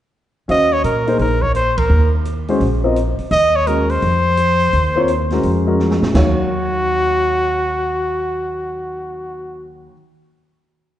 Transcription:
0.48 D#2 C#4 F#4 C5 D#5 F5, open hi-hat
0.73 C#5
0.84 A#2 A#4, closed hi-hat
1.07 A#3 D#4 G#4 C5, open hi-hat
1.19 A#1 A#4, open hi-hat
1.42 C#5, kick
1.55 C5, closed hi-hat
1.78 A#4, kick, ride
1.90 D#2
2.25 closed hi-hat
2.48 G#3 C#4 F#4 C5, open hi-hat
2.60 A#1, open hi-hat
2.84 C4 F4 A#4 D#5
2.96 closed hi-hat
3.19 muted upright bass stroke, open hi-hat
3.31 D#2 D#5, open hi-hat
3.56 C#5
3.67 G#3 C#4 F#4 A#4, closed hi-hat
3.90 C5, open hi-hat
4.02 F2, open hi-hat
4.37 closed hi-hat
4.60 open hi-hat
4.73 D#2, open hi-hat
4.96 C4 F4 A#4 C#5
5.08 closed hi-hat
5.30 G#3 C#4 F#4 A#4, snare, open hi-hat
5.43 F2, open hi-hat
5.66 G#3 C#4 F#4 A#4
5.79 snare
5.91 snare
6.02 A#2, snare
6.14 D#2 D#3 F#3 F#4 C#5 F5, kick, snare, crash

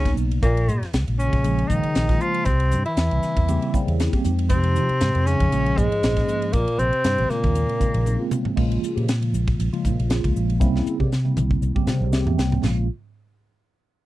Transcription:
Already playing: C#2 C#3 C#4
0.05 C#3 F#3 A#3 B3 D#4, kick, snare, ride
0.17 B1, hi-hat pedal
0.31 ride
0.42 A#1 A#2 A#3, kick, hi-hat pedal, ride
0.57 ride
0.68 A#2, hi-hat pedal
0.82 muted fingered electric bass stroke, snare, ride
0.93 C#2, snare, hi-hat pedal, ride
1.07 A#1 C#3 F3 G#3 A#3 F4, ride
1.19 C#3 C#4, hi-hat pedal
1.33 A#1, kick, ride
1.43 C#3 F3 G#3 A#3 G#4, hi-hat pedal, ride
1.59 ride
1.69 A#1 C#3 D#3 F3 G#3 A#3 D#4, kick, hi-hat pedal
1.83 muted fingered electric bass stroke, ride
1.95 A#1, snare, hi-hat pedal, ride
2.09 C#3 F3 G#3 A#3 F4, kick, snare, ride
2.20 F3 F4, hi-hat pedal
2.34 ride
2.45 C2 C3 C4, kick, hi-hat pedal, ride
2.60 ride
2.71 G2, hi-hat pedal
2.86 E3 E4, ride
2.97 E2, snare, hi-hat pedal, ride
3.10 C2 C#3 G3 A#3 C4 E4, ride
3.22 snare, hi-hat pedal
3.36 E2, kick, ride
3.48 C#3 G3 A#3 C4 G4, hi-hat pedal, ride
3.62 ride
3.74 C#3 G3 A#3 C4 E4, kick, hi-hat pedal
3.87 E2, ride
4.00 snare, hi-hat pedal, ride
4.13 C#3 G3 A#3 C4 G4, kick, ride
4.24 F2 F3 G#3 C4 D#4 G4, hi-hat pedal
4.39 ride
4.49 C3 C4, kick, hi-hat pedal, ride
4.63 ride
4.76 F3, hi-hat pedal
4.89 muted fingered electric bass stroke, ride
5.01 G#2, snare, hi-hat pedal, ride
5.15 F2 F3 G#3 C4 D#4 A#4, ride
5.26 C#3 C#4, snare, hi-hat pedal
5.40 F2, kick, ride
5.52 A#1 F3 G#3 A#3 C#4 G#4, hi-hat pedal, ride
5.66 ride
5.76 A#1 G#2 F3 G#3 A#3 C#4 G#4, kick, hi-hat pedal
5.92 ride
6.03 A#1, snare, hi-hat pedal, ride
6.17 F3 G#3 A#3 C#4 G#4, kick, snare, ride
6.28 hi-hat pedal
6.42 ride
6.53 A#1 A#2 A#3, kick, hi-hat pedal, ride
6.68 ride
6.79 A#1 C3 C4, hi-hat pedal
6.93 ride
7.04 G2, snare, hi-hat pedal, ride
7.18 A#1 D#3 G3 A#3 C#4 G4, ride
7.29 A#2 C#3 G#3 A#3 C4 F4, muted fingered electric bass stroke, snare, hi-hat pedal
7.44 D#2, kick, ride
7.55 hi-hat pedal, ride
7.69 ride
7.80 C#3 G#3 A#3 C4 D#4, kick, hi-hat pedal
7.94 A#1, ride
8.06 hi-hat pedal, high tom
8.19 C#3 G#3 A#3 C4 F4
8.31 hi-hat pedal, mid tom
8.45 muted fingered electric bass stroke, floor tom
8.56 A#1 C#3 F3 G#3 A#3 F4, kick, crash
8.72 ride
8.83 muted fingered electric bass stroke, hi-hat pedal
8.95 A#2 C#3 F3 G#3 A#3 G4, ride
9.07 A#3 C#4, snare, hi-hat pedal, ride
9.21 C#3 F3 G#3 A#3 F4, ride
9.33 A#1, hi-hat pedal
9.47 kick, ride
9.59 A#1, hi-hat pedal, ride
9.73 C#3 F3 G#3 A#3 F4, ride
9.85 A#2, kick, hi-hat pedal
9.99 A#1, ride
10.10 C#3 F3 G#3 A#3 F4, snare, hi-hat pedal, ride
10.24 C#2, kick, ride
10.36 A#1, hi-hat pedal
10.50 ride
10.60 C2 C#3 G3 A#3 C4 E4, kick, hi-hat pedal, high tom
10.76 snare
10.86 hi-hat pedal
10.99 C3 C#3 G3 A#3 C4 G4, kick
11.11 C4 E4, snare, hi-hat pedal
11.25 C#3 G3 A#3 C4 E4
11.36 C2, hi-hat pedal, mid tom
11.51 kick
11.62 C2, hi-hat pedal
11.75 C#3 G3 A#3 C4 G4, muted fingered electric bass stroke, kick
11.87 C3 C5, snare, hi-hat pedal
12.00 C2
12.12 C#3 G3 A#3 C4 G4 E5, snare, hi-hat pedal
12.26 E2, floor tom
12.38 C2 G5, snare, hi-hat pedal
12.52 floor tom
12.63 A#1 C#3 F3 G#3 A#3 F4, snare, floor tom, crash

